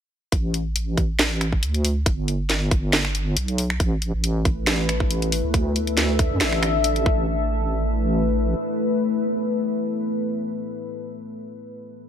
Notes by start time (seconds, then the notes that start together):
0.32 A1, kick, closed hi-hat
0.54 closed hi-hat
0.76 closed hi-hat
0.97 kick, closed hi-hat
1.19 snare, closed hi-hat
1.41 finger snap, closed hi-hat
1.52 kick
1.63 D2, closed hi-hat
1.74 closed hi-hat
1.85 open hi-hat
2.06 G1, kick, closed hi-hat
2.28 closed hi-hat
2.50 snare, closed hi-hat
2.71 G1, kick, closed hi-hat
2.93 snare, closed hi-hat
3.05 finger snap
3.15 closed hi-hat
3.37 B1, closed hi-hat
3.48 closed hi-hat
3.58 open hi-hat
3.70 finger snap
3.80 A1 A3 E4 B4, kick, closed hi-hat
4.02 closed hi-hat
4.14 A1
4.24 closed hi-hat
4.45 kick, closed hi-hat
4.67 snare, closed hi-hat
4.89 finger snap, closed hi-hat
5.00 kick
5.11 closed hi-hat
5.22 closed hi-hat
5.32 open hi-hat
5.44 D2
5.54 D4 A4 E5, kick, closed hi-hat
5.76 closed hi-hat
5.87 closed hi-hat
5.97 snare, closed hi-hat
6.19 kick, closed hi-hat
6.31 F#2
6.41 A1, snare, closed hi-hat
6.52 finger snap
6.63 finger snap, closed hi-hat
6.84 closed hi-hat
6.96 closed hi-hat
7.06 A1 A3 E4 B4, kick